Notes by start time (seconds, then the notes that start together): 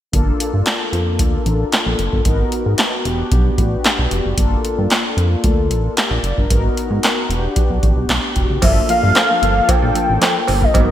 0.12 G1 A#3 D4 F4 A4, kick, closed hi-hat
0.40 closed hi-hat
0.54 G2
0.66 snare, clap, closed hi-hat
0.93 F2, closed hi-hat
1.19 D2, kick, closed hi-hat
1.46 A1, closed hi-hat
1.72 snare, clap, closed hi-hat
1.86 A#1
1.99 F#1, closed hi-hat
2.13 G1, kick
2.25 G#1 B3 D#4 F#4 A#4, kick, closed hi-hat
2.52 closed hi-hat
2.66 G#2
2.78 snare, clap, closed hi-hat
3.04 E1 B3 D4 F#4 G4, closed hi-hat
3.32 B1, kick, closed hi-hat
3.58 A1, kick, closed hi-hat
3.84 snare, clap, closed hi-hat
3.99 B1
4.11 F1, closed hi-hat
4.26 F#1
4.37 G1 A#3 D4 F4 A4, kick, closed hi-hat
4.65 closed hi-hat
4.78 G2
4.90 snare, clap, closed hi-hat
5.17 F2, closed hi-hat
5.44 D2, kick, closed hi-hat
5.70 A1, closed hi-hat
5.97 G4 E5, snare, clap, closed hi-hat
6.11 A#1 F4 D5
6.23 F#1, closed hi-hat
6.38 G1 D4 A#4, kick
6.50 G#1 B3 D#4 F#4 A#4, kick, closed hi-hat
6.77 closed hi-hat
6.91 G#2
7.03 snare, clap, closed hi-hat
7.29 E1 B3 D4 F#4 G4, closed hi-hat
7.56 kick, closed hi-hat
7.70 B1
7.83 A1, kick, closed hi-hat
7.97 B1
8.09 B1, snare, clap, closed hi-hat
8.36 F1, kick, closed hi-hat
8.50 F#1
8.62 G1 F3 A#3 D4 F4 A4 E5, kick, closed hi-hat, crash, cowbell
8.88 F3 A#3 F4 A#4 F5, closed hi-hat
9.03 G2 F3 A#3 F4 A4
9.15 muted clean electric guitar stroke, snare, clap, closed hi-hat, cowbell
9.29 F3 A#3 F4 A4
9.42 G1 F3 A#3 F4 A4, closed hi-hat
9.56 muted clean electric guitar stroke
9.68 G5, muted clean electric guitar stroke, kick, closed hi-hat, cowbell
9.82 A#1 F3 A#3 F4 A4
9.94 F3 A#3 F4 A4, closed hi-hat
10.09 A1, muted clean electric guitar stroke
10.21 F3 A#3 F4 A4, snare, clap, closed hi-hat, cowbell
10.34 muted clean electric guitar stroke
10.47 G1, muted clean electric guitar stroke, open hi-hat, cowbell
10.61 F3 A#3 F4 A#4 D#5, kick
10.74 G#1 F#3 B3 D#4 F#4 A#4, kick, closed hi-hat, cowbell